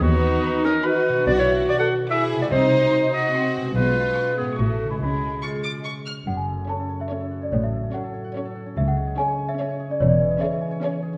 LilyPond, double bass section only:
\new Staff \with { instrumentName = "Double bass section" } { \clef bass \time 3/4 \key b \major \tempo 4 = 145 dis,4 r2 | \key fis \minor b,,4 r2 | bis,,4 r2 | b,,4 r4 a,,4 |
cis,4 r2 | fis,,4 r2 | a,,4 r2 | cis,4 r2 |
e,,4 r2 | }